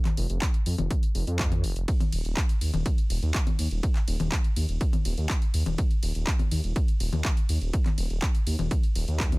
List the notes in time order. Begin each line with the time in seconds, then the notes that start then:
0.05 clap, closed hi-hat, low conga
0.17 F1, open hi-hat
0.30 F1, closed hi-hat
0.42 kick, clap, closed hi-hat
0.54 closed hi-hat
0.66 F2, open hi-hat
0.78 F1, closed hi-hat, low conga
0.91 kick, closed hi-hat
1.03 closed hi-hat
1.15 F1, open hi-hat
1.27 F2, closed hi-hat
1.39 kick, clap, closed hi-hat
1.52 closed hi-hat, low conga
1.64 F1, open hi-hat
1.76 F1, closed hi-hat
1.88 kick, closed hi-hat, ride
2.00 closed hi-hat, low conga
2.12 D#1, open hi-hat, ride
2.25 D#1, closed hi-hat
2.37 kick, clap, closed hi-hat, ride
2.49 closed hi-hat
2.61 D#2, open hi-hat, ride
2.74 D#1, closed hi-hat, low conga
2.86 kick, closed hi-hat, ride
2.98 closed hi-hat
3.10 D#1, open hi-hat, ride
3.22 D#2, closed hi-hat
3.34 kick, clap, closed hi-hat, ride
3.47 closed hi-hat, low conga
3.59 D#2, open hi-hat, ride
3.71 D#1, closed hi-hat
3.83 kick, closed hi-hat, ride
3.96 clap, closed hi-hat
4.08 D#1, open hi-hat, ride
4.20 D#1, closed hi-hat, low conga
4.32 kick, clap, closed hi-hat, ride
4.44 closed hi-hat
4.56 D#2, open hi-hat, ride
4.69 D#1, closed hi-hat
4.81 kick, closed hi-hat, ride
4.93 closed hi-hat, low conga
5.05 D#1, open hi-hat, ride
5.17 D#2, closed hi-hat
5.30 kick, clap, closed hi-hat, ride
5.42 closed hi-hat
5.54 D#2, open hi-hat, ride
5.66 D#1, closed hi-hat, low conga
5.78 kick, closed hi-hat, ride
5.91 closed hi-hat
6.03 D#1, open hi-hat, ride
6.15 D#1, closed hi-hat
6.27 kick, clap, closed hi-hat, ride
6.39 closed hi-hat, low conga
6.51 D#2, open hi-hat, ride
6.64 D#1, closed hi-hat
6.76 kick, closed hi-hat, ride
6.88 closed hi-hat
7.00 D#1, open hi-hat, ride
7.13 D#2, closed hi-hat, low conga
7.25 kick, clap, closed hi-hat, ride
7.37 closed hi-hat
7.49 D#2, open hi-hat, ride
7.61 D#1, closed hi-hat
7.73 kick, closed hi-hat, ride
7.86 clap, closed hi-hat, low conga
7.98 D#1, open hi-hat, ride
8.10 D#1, closed hi-hat
8.22 kick, clap, closed hi-hat, ride
8.35 closed hi-hat
8.47 D#2, open hi-hat, ride
8.59 D#1, closed hi-hat, low conga
8.71 kick, closed hi-hat, ride
8.83 closed hi-hat
8.95 D#1, open hi-hat, ride
9.08 D#2, closed hi-hat
9.20 kick, clap, closed hi-hat, ride
9.32 closed hi-hat, low conga